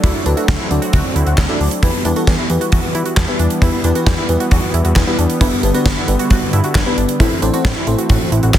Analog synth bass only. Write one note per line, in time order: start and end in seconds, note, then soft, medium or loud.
0.04 0.12 D2 loud
0.26 0.34 D2 loud
0.48 0.57 D2 medium
0.71 0.79 D2 loud
0.93 1.02 D2 loud
1.16 1.24 D2 loud
1.27 1.35 D2 medium
1.38 1.46 D2 loud
1.60 1.69 D2 loud
1.83 1.91 E2 loud
2.05 2.13 E2 loud
2.27 2.36 E2 loud
2.50 2.58 E2 loud
2.72 2.81 E2 loud
2.95 3.03 E3 loud
3.17 3.25 E2 loud
3.39 3.48 E2 medium
3.62 3.70 E2 loud
3.84 3.92 E2 loud
4.06 4.15 E2 loud
4.29 4.37 E2 loud
4.52 4.60 E2 loud
4.74 4.82 E2 loud
4.85 4.93 E2 medium
4.96 5.04 E2 loud
5.18 5.27 E2 medium
5.41 5.49 G1 loud
5.63 5.72 G1 loud
5.86 5.94 G1 loud
6.08 6.16 G1 loud
6.31 6.39 G1 loud
6.53 6.61 G2 loud
6.75 6.83 G1 loud
6.98 7.06 G1 loud
7.20 7.28 A1 loud
7.42 7.51 A1 loud
7.65 7.73 A1 loud
7.87 7.95 A1 loud
8.10 8.18 A1 loud
8.32 8.40 A1 loud
8.43 8.51 A1 loud
8.54 8.59 A1 loud